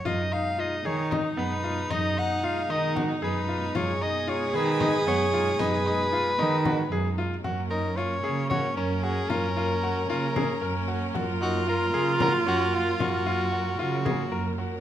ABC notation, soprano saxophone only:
X:1
M:7/8
L:1/8
Q:1/4=114
K:F#
V:1 name="Soprano saxophone"
d e d c z B2 | d f e d z B2 | c d c B2 c2 | B6 z |
z A c2 c A G | A3 A3 z | z F A2 A F E | F3 F3 z |]